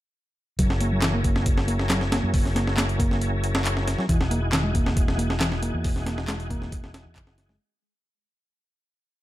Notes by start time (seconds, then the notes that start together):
0.59 F#1 F#3 C#4 E4 G#4 A#4, kick, closed hi-hat
0.70 snare
0.81 A#3, closed hi-hat
0.92 F#3
1.02 E3, snare, clap, closed hi-hat
1.14 A#3
1.24 A#3, kick, closed hi-hat
1.36 snare
1.46 kick, closed hi-hat
1.57 snare
1.68 A#3, closed hi-hat
1.79 snare
1.90 F#3, snare, clap, closed hi-hat
2.01 snare
2.12 A#3, snare, closed hi-hat
2.24 F#2
2.34 F#1, kick, open hi-hat
2.46 snare
2.55 A#3, snare, closed hi-hat
2.67 snare
2.77 A#3, snare, clap, closed hi-hat
2.89 closed hi-hat
2.99 A#3, kick, closed hi-hat
3.11 snare
3.21 closed hi-hat
3.44 closed hi-hat
3.55 snare
3.65 clap, closed hi-hat
3.77 snare
3.88 snare, closed hi-hat
3.98 F#3, snare
4.09 E1 E3 D#4 F#4 G#4, kick, closed hi-hat
4.21 snare
4.31 A#3, closed hi-hat
4.42 E4
4.53 D#3, snare, clap, closed hi-hat
4.64 G#3
4.74 A#3, kick, closed hi-hat
4.86 snare
4.97 kick, closed hi-hat
5.08 snare
5.18 A#3, closed hi-hat
5.30 snare
5.40 E3, snare, clap, closed hi-hat
5.52 snare
5.62 A#3, closed hi-hat
5.74 E2
5.84 E1, kick, open hi-hat
5.96 snare
6.06 A#3, snare, closed hi-hat
6.18 snare
6.28 G#3, snare, clap, closed hi-hat
6.40 closed hi-hat
6.50 A#3, kick, closed hi-hat
6.62 snare
6.72 kick, closed hi-hat
6.84 snare
6.94 snare, closed hi-hat
7.06 E2
7.16 F#1, kick, clap, closed hi-hat
7.27 snare
7.38 snare, closed hi-hat
7.49 G#3, snare